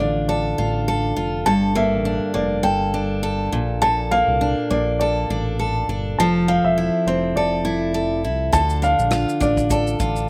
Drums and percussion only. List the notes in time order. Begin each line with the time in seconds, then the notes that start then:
8.53 kick, shaker
8.70 shaker
8.83 shaker
8.99 shaker
9.11 cross-stick, shaker
9.29 shaker
9.41 kick, shaker
9.57 kick, shaker
9.70 kick, shaker
9.87 shaker
10.00 kick, shaker
10.16 shaker